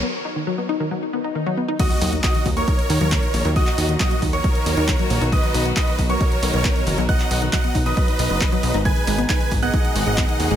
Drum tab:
CC |----------------|x---------------|----------------|----------------|
HH |----------------|xxoxxxoxxxoxxxox|xxoxxxoxxxoxxxox|xxoxxxoxxxoxxxox|
CP |----------------|----x-------x---|-x--x-------x---|----x-------x---|
BD |----------------|o---o-o-o---o---|o---o-o-o---o---|o---o-o-o---o---|

CC |----------------|----------------|
HH |xxoxxxoxxxoxxxox|xxoxxxoxxxoxxxox|
CP |-x--x-------x---|----x-------x---|
BD |o---o-o-o---o---|o---o-o-o---o---|